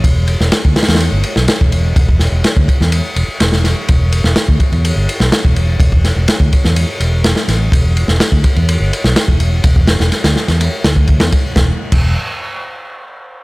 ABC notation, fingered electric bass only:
X:1
M:4/4
L:1/16
Q:1/4=125
K:Em
V:1 name="Fingered electric bass" clef=bass
E,,,3 E,,, z D,, z E,,2 G,,, z B,,, z E,,,3 | E,,,3 E,,, z D,, z E,,2 z E,,, z E,,,3 z | E,,,3 E,,, z D,, z E,,2 G,,, z B,,, z E,,,3 | E,,,3 E,,, z D,, z E,,2 z E,,,3 z A,,,2 |
E,,,3 E,,, z D,, z E,,2 G,,, z B,,, z E,,,3 | E,,,3 E,,, z D,, z E,,2 z D,,3 E,, z2 | E,,, z2 E,,,2 z8 z3 |]